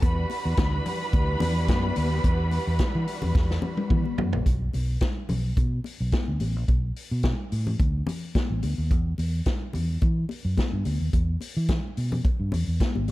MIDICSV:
0, 0, Header, 1, 5, 480
1, 0, Start_track
1, 0, Tempo, 555556
1, 20, Time_signature, 4, 2, 24, 8
1, 11332, End_track
2, 0, Start_track
2, 0, Title_t, "Violin section"
2, 0, Program_c, 0, 48
2, 25, Note_on_c, 0, 83, 113
2, 26, Note_on_c, 0, 71, 105
2, 3580, Note_off_c, 0, 83, 0
2, 3581, Note_off_c, 0, 71, 0
2, 11332, End_track
3, 0, Start_track
3, 0, Title_t, "String section"
3, 0, Program_c, 1, 48
3, 0, Note_on_c, 1, 66, 90
3, 23, Note_on_c, 1, 62, 74
3, 24, Note_on_c, 1, 52, 81
3, 25, Note_on_c, 1, 55, 75
3, 3815, Note_off_c, 1, 66, 0
3, 3819, Note_off_c, 1, 62, 0
3, 3820, Note_off_c, 1, 52, 0
3, 3820, Note_off_c, 1, 55, 0
3, 11332, End_track
4, 0, Start_track
4, 0, Title_t, "Fingered electric bass"
4, 0, Program_c, 2, 33
4, 24, Note_on_c, 2, 40, 88
4, 208, Note_off_c, 2, 40, 0
4, 393, Note_on_c, 2, 40, 93
4, 478, Note_off_c, 2, 40, 0
4, 500, Note_on_c, 2, 38, 92
4, 685, Note_off_c, 2, 38, 0
4, 981, Note_on_c, 2, 38, 110
4, 1165, Note_off_c, 2, 38, 0
4, 1223, Note_on_c, 2, 40, 75
4, 1459, Note_off_c, 2, 40, 0
4, 1459, Note_on_c, 2, 42, 90
4, 1644, Note_off_c, 2, 42, 0
4, 1703, Note_on_c, 2, 39, 86
4, 1886, Note_off_c, 2, 39, 0
4, 1938, Note_on_c, 2, 40, 96
4, 2221, Note_off_c, 2, 40, 0
4, 2309, Note_on_c, 2, 40, 94
4, 2394, Note_off_c, 2, 40, 0
4, 2550, Note_on_c, 2, 52, 102
4, 2634, Note_off_c, 2, 52, 0
4, 2788, Note_on_c, 2, 40, 76
4, 2872, Note_off_c, 2, 40, 0
4, 2897, Note_on_c, 2, 40, 86
4, 3082, Note_off_c, 2, 40, 0
4, 3376, Note_on_c, 2, 52, 101
4, 3473, Note_off_c, 2, 52, 0
4, 3619, Note_on_c, 2, 42, 88
4, 3715, Note_off_c, 2, 42, 0
4, 3748, Note_on_c, 2, 34, 81
4, 3833, Note_off_c, 2, 34, 0
4, 3854, Note_on_c, 2, 35, 77
4, 4040, Note_off_c, 2, 35, 0
4, 4102, Note_on_c, 2, 35, 96
4, 4284, Note_off_c, 2, 35, 0
4, 4580, Note_on_c, 2, 35, 76
4, 4763, Note_off_c, 2, 35, 0
4, 4813, Note_on_c, 2, 47, 79
4, 4999, Note_off_c, 2, 47, 0
4, 5188, Note_on_c, 2, 35, 91
4, 5273, Note_off_c, 2, 35, 0
4, 5426, Note_on_c, 2, 38, 72
4, 5511, Note_off_c, 2, 38, 0
4, 5537, Note_on_c, 2, 33, 98
4, 5669, Note_off_c, 2, 33, 0
4, 5669, Note_on_c, 2, 34, 75
4, 5753, Note_off_c, 2, 34, 0
4, 5777, Note_on_c, 2, 35, 86
4, 5962, Note_off_c, 2, 35, 0
4, 6147, Note_on_c, 2, 47, 81
4, 6331, Note_off_c, 2, 47, 0
4, 6500, Note_on_c, 2, 45, 78
4, 6684, Note_off_c, 2, 45, 0
4, 6737, Note_on_c, 2, 38, 87
4, 6923, Note_off_c, 2, 38, 0
4, 7348, Note_on_c, 2, 33, 76
4, 7434, Note_off_c, 2, 33, 0
4, 7460, Note_on_c, 2, 38, 90
4, 7557, Note_off_c, 2, 38, 0
4, 7587, Note_on_c, 2, 39, 76
4, 7701, Note_off_c, 2, 39, 0
4, 7701, Note_on_c, 2, 40, 87
4, 7885, Note_off_c, 2, 40, 0
4, 7935, Note_on_c, 2, 40, 93
4, 8122, Note_off_c, 2, 40, 0
4, 8417, Note_on_c, 2, 40, 83
4, 8604, Note_off_c, 2, 40, 0
4, 8660, Note_on_c, 2, 52, 83
4, 8846, Note_off_c, 2, 52, 0
4, 9026, Note_on_c, 2, 42, 83
4, 9114, Note_off_c, 2, 42, 0
4, 9266, Note_on_c, 2, 43, 79
4, 9354, Note_off_c, 2, 43, 0
4, 9381, Note_on_c, 2, 38, 82
4, 9479, Note_off_c, 2, 38, 0
4, 9508, Note_on_c, 2, 39, 78
4, 9596, Note_off_c, 2, 39, 0
4, 9621, Note_on_c, 2, 40, 91
4, 9807, Note_off_c, 2, 40, 0
4, 9993, Note_on_c, 2, 52, 97
4, 10178, Note_off_c, 2, 52, 0
4, 10346, Note_on_c, 2, 47, 80
4, 10531, Note_off_c, 2, 47, 0
4, 10710, Note_on_c, 2, 43, 72
4, 10797, Note_off_c, 2, 43, 0
4, 10824, Note_on_c, 2, 40, 76
4, 10922, Note_off_c, 2, 40, 0
4, 10951, Note_on_c, 2, 40, 81
4, 11038, Note_off_c, 2, 40, 0
4, 11193, Note_on_c, 2, 32, 81
4, 11310, Note_off_c, 2, 32, 0
4, 11332, End_track
5, 0, Start_track
5, 0, Title_t, "Drums"
5, 21, Note_on_c, 9, 36, 114
5, 22, Note_on_c, 9, 42, 68
5, 25, Note_on_c, 9, 62, 55
5, 107, Note_off_c, 9, 36, 0
5, 108, Note_off_c, 9, 42, 0
5, 111, Note_off_c, 9, 62, 0
5, 257, Note_on_c, 9, 62, 39
5, 263, Note_on_c, 9, 46, 60
5, 344, Note_off_c, 9, 62, 0
5, 349, Note_off_c, 9, 46, 0
5, 494, Note_on_c, 9, 42, 73
5, 498, Note_on_c, 9, 36, 114
5, 501, Note_on_c, 9, 38, 123
5, 511, Note_on_c, 9, 63, 74
5, 580, Note_off_c, 9, 42, 0
5, 585, Note_off_c, 9, 36, 0
5, 587, Note_off_c, 9, 38, 0
5, 598, Note_off_c, 9, 63, 0
5, 740, Note_on_c, 9, 46, 62
5, 741, Note_on_c, 9, 64, 69
5, 827, Note_off_c, 9, 46, 0
5, 828, Note_off_c, 9, 64, 0
5, 978, Note_on_c, 9, 36, 120
5, 982, Note_on_c, 9, 62, 52
5, 985, Note_on_c, 9, 42, 59
5, 1065, Note_off_c, 9, 36, 0
5, 1068, Note_off_c, 9, 62, 0
5, 1071, Note_off_c, 9, 42, 0
5, 1212, Note_on_c, 9, 62, 52
5, 1212, Note_on_c, 9, 64, 80
5, 1223, Note_on_c, 9, 46, 62
5, 1298, Note_off_c, 9, 62, 0
5, 1298, Note_off_c, 9, 64, 0
5, 1310, Note_off_c, 9, 46, 0
5, 1453, Note_on_c, 9, 42, 60
5, 1456, Note_on_c, 9, 36, 114
5, 1460, Note_on_c, 9, 63, 83
5, 1463, Note_on_c, 9, 38, 110
5, 1540, Note_off_c, 9, 42, 0
5, 1542, Note_off_c, 9, 36, 0
5, 1546, Note_off_c, 9, 63, 0
5, 1550, Note_off_c, 9, 38, 0
5, 1586, Note_on_c, 9, 63, 48
5, 1672, Note_off_c, 9, 63, 0
5, 1691, Note_on_c, 9, 46, 62
5, 1698, Note_on_c, 9, 63, 68
5, 1777, Note_off_c, 9, 46, 0
5, 1784, Note_off_c, 9, 63, 0
5, 1936, Note_on_c, 9, 36, 106
5, 1936, Note_on_c, 9, 42, 73
5, 1938, Note_on_c, 9, 62, 57
5, 2022, Note_off_c, 9, 36, 0
5, 2022, Note_off_c, 9, 42, 0
5, 2024, Note_off_c, 9, 62, 0
5, 2171, Note_on_c, 9, 62, 37
5, 2177, Note_on_c, 9, 46, 59
5, 2258, Note_off_c, 9, 62, 0
5, 2264, Note_off_c, 9, 46, 0
5, 2408, Note_on_c, 9, 42, 59
5, 2414, Note_on_c, 9, 36, 116
5, 2415, Note_on_c, 9, 38, 123
5, 2424, Note_on_c, 9, 63, 71
5, 2494, Note_off_c, 9, 42, 0
5, 2500, Note_off_c, 9, 36, 0
5, 2501, Note_off_c, 9, 38, 0
5, 2510, Note_off_c, 9, 63, 0
5, 2656, Note_on_c, 9, 46, 65
5, 2743, Note_off_c, 9, 46, 0
5, 2781, Note_on_c, 9, 64, 75
5, 2867, Note_off_c, 9, 64, 0
5, 2894, Note_on_c, 9, 36, 127
5, 2898, Note_on_c, 9, 62, 51
5, 2900, Note_on_c, 9, 38, 55
5, 2980, Note_off_c, 9, 36, 0
5, 2985, Note_off_c, 9, 62, 0
5, 2987, Note_off_c, 9, 38, 0
5, 3028, Note_on_c, 9, 38, 59
5, 3115, Note_off_c, 9, 38, 0
5, 3128, Note_on_c, 9, 62, 52
5, 3128, Note_on_c, 9, 64, 72
5, 3214, Note_off_c, 9, 62, 0
5, 3214, Note_off_c, 9, 64, 0
5, 3259, Note_on_c, 9, 48, 61
5, 3346, Note_off_c, 9, 48, 0
5, 3372, Note_on_c, 9, 36, 106
5, 3372, Note_on_c, 9, 47, 83
5, 3376, Note_on_c, 9, 63, 81
5, 3459, Note_off_c, 9, 36, 0
5, 3459, Note_off_c, 9, 47, 0
5, 3462, Note_off_c, 9, 63, 0
5, 3504, Note_on_c, 9, 63, 51
5, 3590, Note_off_c, 9, 63, 0
5, 3612, Note_on_c, 9, 43, 94
5, 3615, Note_on_c, 9, 63, 69
5, 3698, Note_off_c, 9, 43, 0
5, 3702, Note_off_c, 9, 63, 0
5, 3739, Note_on_c, 9, 43, 99
5, 3825, Note_off_c, 9, 43, 0
5, 3853, Note_on_c, 9, 36, 102
5, 3855, Note_on_c, 9, 42, 61
5, 3857, Note_on_c, 9, 62, 52
5, 3940, Note_off_c, 9, 36, 0
5, 3941, Note_off_c, 9, 42, 0
5, 3944, Note_off_c, 9, 62, 0
5, 4091, Note_on_c, 9, 62, 33
5, 4095, Note_on_c, 9, 46, 56
5, 4177, Note_off_c, 9, 62, 0
5, 4181, Note_off_c, 9, 46, 0
5, 4326, Note_on_c, 9, 42, 62
5, 4331, Note_on_c, 9, 36, 103
5, 4333, Note_on_c, 9, 38, 101
5, 4342, Note_on_c, 9, 63, 67
5, 4412, Note_off_c, 9, 42, 0
5, 4417, Note_off_c, 9, 36, 0
5, 4419, Note_off_c, 9, 38, 0
5, 4428, Note_off_c, 9, 63, 0
5, 4569, Note_on_c, 9, 64, 68
5, 4572, Note_on_c, 9, 46, 54
5, 4656, Note_off_c, 9, 64, 0
5, 4658, Note_off_c, 9, 46, 0
5, 4812, Note_on_c, 9, 36, 113
5, 4815, Note_on_c, 9, 62, 47
5, 4817, Note_on_c, 9, 42, 51
5, 4898, Note_off_c, 9, 36, 0
5, 4901, Note_off_c, 9, 62, 0
5, 4903, Note_off_c, 9, 42, 0
5, 5048, Note_on_c, 9, 62, 42
5, 5060, Note_on_c, 9, 46, 59
5, 5134, Note_off_c, 9, 62, 0
5, 5146, Note_off_c, 9, 46, 0
5, 5289, Note_on_c, 9, 42, 51
5, 5292, Note_on_c, 9, 36, 94
5, 5299, Note_on_c, 9, 38, 99
5, 5299, Note_on_c, 9, 63, 76
5, 5375, Note_off_c, 9, 42, 0
5, 5378, Note_off_c, 9, 36, 0
5, 5385, Note_off_c, 9, 38, 0
5, 5385, Note_off_c, 9, 63, 0
5, 5528, Note_on_c, 9, 46, 53
5, 5538, Note_on_c, 9, 63, 56
5, 5614, Note_off_c, 9, 46, 0
5, 5624, Note_off_c, 9, 63, 0
5, 5774, Note_on_c, 9, 36, 101
5, 5774, Note_on_c, 9, 42, 67
5, 5778, Note_on_c, 9, 62, 46
5, 5860, Note_off_c, 9, 36, 0
5, 5860, Note_off_c, 9, 42, 0
5, 5865, Note_off_c, 9, 62, 0
5, 6016, Note_on_c, 9, 46, 55
5, 6102, Note_off_c, 9, 46, 0
5, 6246, Note_on_c, 9, 42, 56
5, 6253, Note_on_c, 9, 36, 101
5, 6253, Note_on_c, 9, 38, 102
5, 6267, Note_on_c, 9, 63, 75
5, 6333, Note_off_c, 9, 42, 0
5, 6339, Note_off_c, 9, 36, 0
5, 6340, Note_off_c, 9, 38, 0
5, 6353, Note_off_c, 9, 63, 0
5, 6495, Note_on_c, 9, 46, 59
5, 6582, Note_off_c, 9, 46, 0
5, 6625, Note_on_c, 9, 64, 59
5, 6711, Note_off_c, 9, 64, 0
5, 6735, Note_on_c, 9, 36, 112
5, 6739, Note_on_c, 9, 62, 54
5, 6742, Note_on_c, 9, 42, 49
5, 6822, Note_off_c, 9, 36, 0
5, 6825, Note_off_c, 9, 62, 0
5, 6828, Note_off_c, 9, 42, 0
5, 6969, Note_on_c, 9, 62, 47
5, 6969, Note_on_c, 9, 64, 72
5, 6985, Note_on_c, 9, 46, 51
5, 7055, Note_off_c, 9, 62, 0
5, 7055, Note_off_c, 9, 64, 0
5, 7071, Note_off_c, 9, 46, 0
5, 7215, Note_on_c, 9, 42, 57
5, 7216, Note_on_c, 9, 36, 100
5, 7217, Note_on_c, 9, 63, 77
5, 7225, Note_on_c, 9, 38, 86
5, 7302, Note_off_c, 9, 36, 0
5, 7302, Note_off_c, 9, 42, 0
5, 7303, Note_off_c, 9, 63, 0
5, 7311, Note_off_c, 9, 38, 0
5, 7452, Note_on_c, 9, 46, 57
5, 7456, Note_on_c, 9, 63, 57
5, 7539, Note_off_c, 9, 46, 0
5, 7543, Note_off_c, 9, 63, 0
5, 7697, Note_on_c, 9, 36, 108
5, 7699, Note_on_c, 9, 42, 66
5, 7700, Note_on_c, 9, 62, 54
5, 7783, Note_off_c, 9, 36, 0
5, 7785, Note_off_c, 9, 42, 0
5, 7786, Note_off_c, 9, 62, 0
5, 7932, Note_on_c, 9, 62, 35
5, 7940, Note_on_c, 9, 46, 64
5, 8018, Note_off_c, 9, 62, 0
5, 8026, Note_off_c, 9, 46, 0
5, 8170, Note_on_c, 9, 42, 56
5, 8176, Note_on_c, 9, 36, 107
5, 8177, Note_on_c, 9, 38, 98
5, 8183, Note_on_c, 9, 63, 74
5, 8257, Note_off_c, 9, 42, 0
5, 8262, Note_off_c, 9, 36, 0
5, 8264, Note_off_c, 9, 38, 0
5, 8269, Note_off_c, 9, 63, 0
5, 8410, Note_on_c, 9, 64, 59
5, 8420, Note_on_c, 9, 46, 58
5, 8496, Note_off_c, 9, 64, 0
5, 8506, Note_off_c, 9, 46, 0
5, 8655, Note_on_c, 9, 62, 46
5, 8657, Note_on_c, 9, 36, 108
5, 8665, Note_on_c, 9, 42, 56
5, 8742, Note_off_c, 9, 62, 0
5, 8744, Note_off_c, 9, 36, 0
5, 8751, Note_off_c, 9, 42, 0
5, 8891, Note_on_c, 9, 62, 44
5, 8906, Note_on_c, 9, 46, 54
5, 8977, Note_off_c, 9, 62, 0
5, 8992, Note_off_c, 9, 46, 0
5, 9136, Note_on_c, 9, 63, 73
5, 9137, Note_on_c, 9, 36, 89
5, 9138, Note_on_c, 9, 42, 55
5, 9148, Note_on_c, 9, 38, 90
5, 9223, Note_off_c, 9, 63, 0
5, 9224, Note_off_c, 9, 36, 0
5, 9224, Note_off_c, 9, 42, 0
5, 9234, Note_off_c, 9, 38, 0
5, 9375, Note_on_c, 9, 46, 55
5, 9376, Note_on_c, 9, 63, 57
5, 9461, Note_off_c, 9, 46, 0
5, 9462, Note_off_c, 9, 63, 0
5, 9618, Note_on_c, 9, 62, 51
5, 9619, Note_on_c, 9, 36, 93
5, 9620, Note_on_c, 9, 42, 64
5, 9705, Note_off_c, 9, 36, 0
5, 9705, Note_off_c, 9, 62, 0
5, 9706, Note_off_c, 9, 42, 0
5, 9855, Note_on_c, 9, 62, 35
5, 9861, Note_on_c, 9, 46, 62
5, 9941, Note_off_c, 9, 62, 0
5, 9948, Note_off_c, 9, 46, 0
5, 10096, Note_on_c, 9, 42, 67
5, 10099, Note_on_c, 9, 36, 102
5, 10102, Note_on_c, 9, 38, 100
5, 10109, Note_on_c, 9, 63, 66
5, 10182, Note_off_c, 9, 42, 0
5, 10185, Note_off_c, 9, 36, 0
5, 10189, Note_off_c, 9, 38, 0
5, 10196, Note_off_c, 9, 63, 0
5, 10342, Note_on_c, 9, 46, 58
5, 10428, Note_off_c, 9, 46, 0
5, 10471, Note_on_c, 9, 64, 70
5, 10558, Note_off_c, 9, 64, 0
5, 10581, Note_on_c, 9, 36, 118
5, 10583, Note_on_c, 9, 62, 51
5, 10589, Note_on_c, 9, 42, 50
5, 10667, Note_off_c, 9, 36, 0
5, 10669, Note_off_c, 9, 62, 0
5, 10675, Note_off_c, 9, 42, 0
5, 10816, Note_on_c, 9, 62, 45
5, 10816, Note_on_c, 9, 64, 73
5, 10831, Note_on_c, 9, 46, 58
5, 10902, Note_off_c, 9, 62, 0
5, 10902, Note_off_c, 9, 64, 0
5, 10917, Note_off_c, 9, 46, 0
5, 11060, Note_on_c, 9, 42, 52
5, 11061, Note_on_c, 9, 36, 99
5, 11065, Note_on_c, 9, 63, 79
5, 11070, Note_on_c, 9, 38, 90
5, 11146, Note_off_c, 9, 42, 0
5, 11147, Note_off_c, 9, 36, 0
5, 11152, Note_off_c, 9, 63, 0
5, 11156, Note_off_c, 9, 38, 0
5, 11191, Note_on_c, 9, 63, 53
5, 11278, Note_off_c, 9, 63, 0
5, 11300, Note_on_c, 9, 46, 53
5, 11305, Note_on_c, 9, 63, 60
5, 11332, Note_off_c, 9, 46, 0
5, 11332, Note_off_c, 9, 63, 0
5, 11332, End_track
0, 0, End_of_file